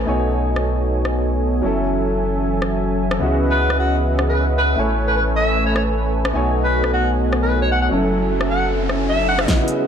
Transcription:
0.05 1.62 B1 medium
0.05 1.61 B2 medium
0.05 1.61 A3 medium
0.05 1.62 A3 medium
0.05 1.62 B3 medium
0.05 1.62 D#4 medium
0.05 1.62 F#4 medium
0.05 1.62 A4 medium
0.05 1.62 C#5 medium
0.05 1.63 C#5 medium
0.05 1.62 D#5 medium
0.05 1.62 G#5 medium
0.56 cross-stick soft
1.05 cross-stick medium
1.62 3.19 F#1 medium
1.62 4.75 E3 medium
1.62 3.17 F#3 medium
1.62 3.18 F#3 medium
1.62 3.19 F#3 medium
1.62 3.18 C#4 medium
1.62 3.19 E4 medium
1.62 3.18 A4 medium
1.62 3.19 A4 medium
1.62 3.18 E5 medium
1.62 3.18 G#5 medium
2.62 cross-stick medium
3.11 cross-stick medium
3.19 4.76 C#2 medium
3.19 4.74 C#3 medium
3.19 4.76 C#3 medium
3.19 4.75 B3 medium
3.19 4.76 B3 medium
3.19 4.75 C#4 medium
3.19 4.75 E4 medium
3.19 4.76 F#4 medium
3.19 4.75 G#4 medium
3.19 4.75 B4 medium
3.19 4.75 D#5 medium
3.19 4.75 E5 medium
3.19 4.75 F#5 medium
3.23 4.76 F#4 medium
3.51 3.78 B4 medium
3.70 cross-stick medium
3.79 3.96 F#4 medium
4.19 cross-stick medium
4.29 4.45 B4 medium
4.58 4.82 B4 medium
4.76 6.33 A1 medium
4.76 6.31 A3 medium
4.76 7.88 A3 medium
4.76 6.32 A3 medium
4.76 6.33 C#4 medium
4.76 6.32 E4 medium
4.76 6.32 A4 medium
4.76 6.32 B4 medium
4.76 6.32 C#5 medium
4.76 6.33 C#5 medium
4.76 6.32 G#5 medium
4.76 6.33 G#5 medium
5.07 5.13 B4 medium
5.17 5.23 B4 medium
5.36 5.64 E5 medium
5.66 5.72 C#5 medium
5.76 5.82 C#5 medium
5.76 cross-stick medium
6.25 cross-stick medium
6.32 7.89 B1 medium
6.32 7.88 B2 medium
6.32 7.89 A3 medium
6.32 7.89 B3 medium
6.32 7.90 B3 medium
6.32 7.89 D#4 medium
6.32 7.90 D#4 medium
6.32 7.89 F#4 medium
6.32 7.89 A4 medium
6.32 7.89 C#5 medium
6.32 7.89 D#5 medium
6.32 7.89 G#5 medium
6.32 riser medium
6.36 7.90 C#5 medium
6.64 6.91 B4 medium
6.84 cross-stick medium
6.93 7.10 F#4 medium
7.33 cross-stick medium
7.43 7.59 B4 medium
7.62 7.70 C#5 medium
7.72 7.78 F#5 medium
7.82 7.88 F#5 medium
7.89 9.46 F#1 medium
7.89 9.45 F#3 medium
7.89 9.47 F#3 medium
7.89 9.46 F#3 medium
7.89 9.46 C#4 medium
7.89 9.47 E4 medium
7.89 9.46 E4 medium
7.89 9.46 A4 medium
7.89 9.47 A4 medium
7.89 9.46 E5 medium
7.89 9.46 G#5 medium
7.93 9.47 A4 medium
8.41 cross-stick medium
8.50 8.67 F#5 medium
8.89 cross-stick medium
9.09 9.27 E5 medium
9.29 9.48 F#5 medium
9.39 cross-stick medium
9.46 9.76 C#2 medium
9.46 9.87 C#3 medium
9.46 9.87 B3 medium
9.46 9.75 C#4 medium
9.46 9.87 E4 medium
9.46 9.87 F#4 medium
9.46 9.75 G#4 medium
9.46 9.75 B4 medium
9.46 9.75 D#5 medium
9.46 9.75 E5 medium
9.46 9.75 F#5 medium
9.46 kick medium
9.46 snare soft
9.46 closed hi-hat medium
9.46 riser medium
9.50 9.87 D#5 loud
9.68 closed hi-hat medium
9.78 9.87 C#2 medium
9.78 9.87 C#4 medium
9.78 9.87 G#4 medium
9.78 9.87 B4 medium
9.78 9.87 D#5 medium
9.78 9.87 E5 medium
9.78 9.87 F#5 loud

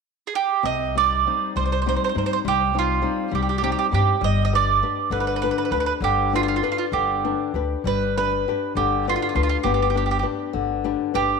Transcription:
0.27 0.35 G#4 medium
0.35 0.63 G4 medium
0.63 1.23 C2 medium
0.63 1.24 C3 medium
0.63 0.97 D#5 medium
0.95 1.25 G3 soft
0.95 1.26 C4 soft
0.95 1.26 D#4 soft
0.95 1.52 D5 medium
1.27 1.55 G3 soft
1.27 1.75 C4 soft
1.27 1.76 D#4 soft
1.56 1.95 C2 medium
1.56 1.85 G3 medium
1.56 1.64 C5 medium
1.66 1.71 C5 soft
1.72 1.79 C5 medium
1.82 1.87 C5 soft
1.86 2.14 G3 soft
1.86 2.14 C4 soft
1.86 2.14 D#4 soft
1.86 1.95 C5 medium
1.96 2.02 C5 soft
2.04 2.08 C5 medium
2.09 2.16 C5 soft
2.15 2.35 G2 medium
2.15 2.44 G3 soft
2.15 2.63 C4 soft
2.15 2.63 D#4 soft
2.15 2.24 C5 soft
2.26 2.31 C5 medium
2.33 2.38 C5 medium
2.45 3.02 C2 medium
2.45 2.73 G3 soft
2.45 2.78 G4 medium
2.74 3.01 G3 soft
2.74 3.01 C4 soft
2.74 3.01 D#4 soft
2.79 3.30 F4 medium
3.02 3.30 G3 soft
3.02 3.50 C4 soft
3.02 3.50 D#4 medium
3.31 3.71 C2 medium
3.31 3.62 G3 medium
3.31 3.41 G4 soft
3.42 3.48 G4 soft
3.49 3.56 G4 soft
3.58 3.62 G4 medium
3.63 3.90 G3 soft
3.63 3.91 C4 soft
3.63 3.92 D#4 soft
3.63 3.71 G4 medium
3.72 3.77 G4 soft
3.79 3.85 G4 medium
3.92 4.11 G2 loud
3.92 4.15 G3 soft
3.92 4.16 C4 soft
3.92 4.16 D#4 soft
3.92 4.21 G4 medium
4.21 4.80 G1 medium
4.21 4.80 G3 medium
4.21 4.44 D#5 medium
4.45 4.52 D#5 medium
4.52 4.82 D4 soft
4.52 4.82 G4 soft
4.52 4.82 B4 soft
4.52 5.12 D5 medium
4.83 5.31 D4 soft
4.83 5.31 G4 soft
4.83 5.31 B4 soft
5.10 5.50 G1 medium
5.10 5.69 D3 medium
5.10 5.19 B4 medium
5.20 5.26 B4 soft
5.27 5.34 B4 soft
5.36 5.41 B4 medium
5.42 5.71 D4 soft
5.42 5.71 G4 soft
5.42 5.49 B4 medium
5.42 5.72 B4 medium
5.51 5.57 B4 soft
5.58 5.64 B4 medium
5.65 5.71 B4 soft
5.71 5.90 D2 medium
5.71 6.20 D4 soft
5.71 6.20 G4 soft
5.71 5.78 B4 medium
5.71 6.21 B4 soft
5.80 5.85 B4 medium
5.86 5.93 B4 medium
6.00 6.60 G1 medium
6.00 6.60 D3 medium
6.00 6.31 G4 medium
6.33 6.62 D4 soft
6.33 6.41 F4 medium
6.33 6.61 G4 soft
6.33 6.62 B4 soft
6.43 6.47 F4 soft
6.48 6.54 F4 medium
6.56 6.62 F4 soft
6.63 7.12 D4 soft
6.63 6.69 F4 soft
6.63 7.12 G4 soft
6.63 7.12 B4 medium
6.72 6.77 F4 soft
6.78 6.84 F4 medium
6.92 7.32 G1 medium
6.92 7.52 D3 medium
6.92 7.81 G4 medium
7.24 7.54 D4 soft
7.24 7.54 G4 soft
7.24 7.55 B4 soft
7.54 7.74 D2 medium
7.54 8.04 D4 soft
7.54 8.04 G4 soft
7.54 8.05 B4 soft
7.84 8.43 G1 medium
7.84 8.45 G3 medium
7.84 8.16 B4 medium
8.17 8.47 D4 soft
8.17 8.47 G4 soft
8.17 8.72 B4 medium
8.17 8.48 B4 soft
8.48 8.96 D4 soft
8.48 8.96 G4 soft
8.48 8.96 B4 soft
8.75 9.14 G1 medium
8.75 9.34 D3 medium
8.75 9.05 G4 medium
9.07 9.34 D4 soft
9.07 9.15 F4 medium
9.07 9.34 G4 soft
9.07 9.35 B4 soft
9.16 9.21 F4 soft
9.22 9.28 F4 soft
9.29 9.34 F4 soft
9.35 9.54 D2 medium
9.35 9.83 D4 soft
9.35 9.42 F4 soft
9.35 9.84 G4 soft
9.35 9.85 B4 soft
9.43 9.48 F4 medium
9.49 9.56 F4 medium
9.63 10.23 G1 medium
9.63 10.23 B3 medium
9.63 9.71 G4 medium
9.74 9.81 G4 soft
9.82 9.89 G4 soft
9.90 9.96 G4 soft
9.94 10.22 D4 soft
9.94 10.22 G4 soft
9.94 10.03 G4 medium
9.94 10.22 B4 soft
10.06 10.10 G4 soft
10.11 10.17 G4 soft
10.19 10.72 D4 soft
10.19 10.25 G4 soft
10.23 10.72 G4 soft
10.23 10.72 B4 soft
10.53 10.93 G1 medium
10.53 11.12 D3 medium
10.84 11.13 D4 soft
10.84 11.13 G4 soft
10.84 11.13 B4 soft
11.14 11.34 G1 medium
11.14 11.38 D4 soft
11.14 11.38 G4 soft
11.14 11.40 G4 medium
11.14 11.38 B4 soft

